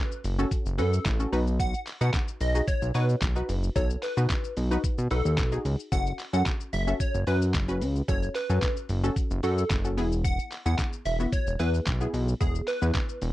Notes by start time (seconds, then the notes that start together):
Already playing: C#4 F#4 A4 B4
0.12 shaker
0.24 F#1, open hi-hat, shaker
0.39 C#4 F#4 A4, shaker
0.51 kick, closed hi-hat, shaker
0.66 F#1, shaker
0.78 F#2 C#4 F#4 A4 B4, open hi-hat, shaker
0.93 shaker
1.06 A1, kick, snare, clap, closed hi-hat, shaker
1.20 C#4 F#4 A4, shaker
1.32 B1 D#4 F#4 B4, open hi-hat, shaker
1.47 shaker
1.60 F#5, kick, closed hi-hat, shaker
1.74 shaker
1.87 clap, open hi-hat, shaker
2.01 B2 D#4 F#4 B4 F#5, shaker
2.14 kick, snare, clap, closed hi-hat, shaker
2.28 shaker
2.41 B1 D#5, open hi-hat, shaker
2.55 D#4 F#4 G#4, shaker
2.68 C#5, kick, closed hi-hat, shaker
2.82 B1, shaker
2.94 B2 D#4 F#4 B4 C#5, open hi-hat, shaker
3.09 shaker
3.22 B1, kick, snare, clap, closed hi-hat, shaker
3.36 D#4 F#4 B4, shaker
3.49 F#1, open hi-hat, shaker
3.63 shaker
3.76 B1 D#4 F#4 A4 C#5, kick, closed hi-hat, shaker
3.90 shaker
4.03 B4, clap, open hi-hat, shaker
4.17 B2 D#4 F#4 B4, shaker
4.30 kick, snare, clap, closed hi-hat, shaker
4.44 shaker
4.57 B1, open hi-hat, shaker
4.71 D#4 F#4 B4, shaker
4.84 kick, closed hi-hat, shaker
4.98 B2, shaker
5.11 B1 D#4 F#4 A4 B4, open hi-hat, shaker
5.25 D#2, shaker
5.38 B1, kick, snare, clap, closed hi-hat, shaker
5.52 D#4 F#4 G#4, shaker
5.65 C#2, open hi-hat, shaker
5.79 shaker
5.92 F#1 C#4 F#4 A4 F#5, kick, closed hi-hat, shaker
6.06 shaker
6.19 clap, open hi-hat, shaker
6.33 F#2 C#4 F#4 A4 F#5, shaker
6.46 kick, snare, clap, closed hi-hat, shaker
6.60 shaker
6.73 F#1 E5, open hi-hat, shaker
6.87 C#4 F#4 A4, shaker
7.00 C#5, kick, closed hi-hat, shaker
7.14 F#1, shaker
7.27 F#2 C#4 F#4 B4, open hi-hat, shaker
7.42 shaker
7.54 F#1, kick, snare, clap, closed hi-hat, shaker
7.68 C#4 F#4 B4, shaker
7.81 C#2, open hi-hat, shaker
7.96 shaker
8.08 F#1 C#4 F#4 A4 C#5, kick, closed hi-hat, shaker
8.23 shaker
8.35 B4, clap, open hi-hat, shaker
8.50 F#2 C#4 F#4 A4, shaker
8.62 kick, snare, clap, closed hi-hat, shaker
8.77 shaker
8.89 F#1, open hi-hat, shaker
9.04 C#4 F#4 A4, shaker
9.16 kick, closed hi-hat, shaker
9.31 F#1, shaker
9.43 F#2 C#4 F#4 A4, open hi-hat, shaker
9.58 shaker
9.70 F#1, kick, snare, clap, closed hi-hat, shaker
9.85 C#4 F#4 A4, shaker
9.97 E1 B3 E4 G#4, open hi-hat, shaker
10.12 shaker
10.24 F#5, kick, closed hi-hat, shaker
10.39 shaker
10.52 clap, open hi-hat, shaker
10.66 E2 B3 E4 G#4 F#5, shaker
10.79 kick, snare, clap, closed hi-hat, shaker
10.93 shaker
11.05 E1 E5, open hi-hat, shaker
11.20 B3 E4 F#4, shaker
11.32 C#5, kick, closed hi-hat, shaker
11.47 E1, shaker
11.59 E2 B3 E4 G#4 B4, open hi-hat, shaker
11.74 shaker
11.87 B1, kick, snare, clap, closed hi-hat, shaker
12.01 B3 E4 G#4, shaker
12.14 B1, open hi-hat, shaker
12.28 shaker
12.40 E1 B3 E4 G#4, kick, closed hi-hat, shaker
12.55 shaker
12.68 B4, clap, open hi-hat, shaker
12.82 E2 B3 E4 B4, shaker
12.95 kick, snare, clap, closed hi-hat, shaker
13.09 shaker
13.22 E1, open hi-hat, shaker